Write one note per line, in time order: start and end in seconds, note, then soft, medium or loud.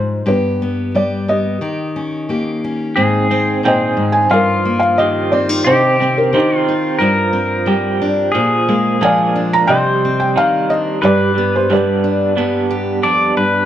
0.00 0.25 G#2 soft
0.00 0.23 F3 soft
0.00 0.28 G#3 soft
0.00 0.25 F4 medium
0.00 0.24 G4 soft
0.00 0.28 C5 medium
0.26 1.57 G2 medium
0.26 1.59 B3 soft
0.26 0.94 G4 medium
0.26 0.91 B4 medium
0.62 1.27 B3 soft
0.95 1.58 G3 soft
0.95 1.58 G4 soft
0.95 1.30 D5 medium
1.28 1.58 B3 soft
1.28 2.61 G4 soft
1.28 2.60 D#5 medium
1.61 4.98 D#3 medium
1.61 2.29 G4 soft
1.96 2.63 C#4 soft
2.29 2.93 A#3 soft
2.29 2.93 G4 soft
2.64 2.94 C#4 soft
2.96 3.96 G#2 medium
2.96 3.30 C4 medium
2.96 4.31 G#4 medium
3.31 3.64 C4 medium
3.31 4.28 C4 medium
3.63 3.98 A#2 medium
3.63 4.39 C4 medium
3.63 4.39 D#4 medium
3.63 4.39 G#4 medium
3.63 4.17 G5 medium
3.68 4.29 C5 medium
3.68 4.29 D#5 medium
3.97 4.29 G#2 medium
4.12 4.31 G#5 medium
4.30 5.61 G2 medium
4.30 5.73 F3 medium
4.30 5.62 F4 medium
4.30 4.78 F5 medium
4.34 5.63 A#4 medium
4.65 5.62 A#3 medium
4.80 4.98 F5 medium
4.98 6.32 D#3 medium
4.98 5.73 G4 medium
4.98 5.33 D#5 medium
5.32 5.49 C4 medium
5.32 5.67 D5 medium
5.49 5.66 D#4 soft
5.65 6.33 C3 medium
5.65 5.99 C4 medium
5.65 6.59 G4 medium
5.65 6.19 C5 medium
5.71 6.35 D#4 medium
5.71 6.35 G4 medium
6.00 6.33 C4 medium
6.00 6.97 C4 medium
6.18 6.34 A#4 medium
6.33 7.00 D#3 medium
6.33 7.07 C4 medium
6.33 7.08 D#4 medium
6.33 6.98 D#4 soft
6.33 7.08 G4 medium
6.33 6.96 C5 medium
6.37 6.98 G4 soft
6.59 7.04 F4 medium
6.68 6.97 D#4 medium
6.99 8.30 G2 medium
6.99 8.33 F3 medium
6.99 8.31 A#4 medium
7.33 8.30 C4 soft
7.66 8.30 G3 medium
7.66 8.41 G4 medium
8.02 8.71 D4 medium
8.32 9.68 A#2 medium
8.32 9.68 F3 medium
8.32 9.67 G#4 medium
8.68 9.68 G#3 medium
8.68 9.00 A#3 medium
9.01 9.64 F3 medium
9.01 9.75 A#3 medium
9.01 9.75 D4 medium
9.01 9.75 G#4 medium
9.01 9.66 D5 medium
9.01 9.66 F5 medium
9.01 9.54 G#5 medium
9.36 9.72 D4 medium
9.53 9.70 A#5 medium
9.67 10.35 C3 medium
9.67 11.01 G3 medium
9.67 11.01 C5 medium
9.67 10.99 D5 medium
9.67 10.68 D#5 medium
9.67 10.18 G5 medium
10.05 11.00 C4 medium
10.20 10.35 G5 medium
10.36 11.03 D#3 medium
10.36 11.09 D#4 medium
10.36 10.71 F5 medium
10.70 10.99 D4 medium
10.70 11.04 D#5 medium
11.02 13.03 G2 medium
11.02 11.34 G3 medium
11.02 11.72 G4 medium
11.02 13.09 B4 medium
11.02 11.73 B4 medium
11.02 11.55 D5 medium
11.35 11.69 G3 medium
11.35 12.37 B3 medium
11.56 11.71 C5 medium
11.70 12.35 G3 medium
11.70 13.65 G3 medium
11.70 12.36 B3 soft
11.70 12.37 D4 medium
11.70 13.02 G4 soft
11.70 12.34 D5 medium
11.74 13.02 B4 soft
12.04 13.65 D4 medium
12.36 13.65 G3 soft
12.36 13.65 B3 medium
12.36 13.02 D4 medium
12.71 13.65 G4 medium
13.03 13.36 F2 soft
13.03 13.65 D4 medium
13.03 13.37 D5 medium
13.37 13.65 G2 medium
13.37 13.65 B4 medium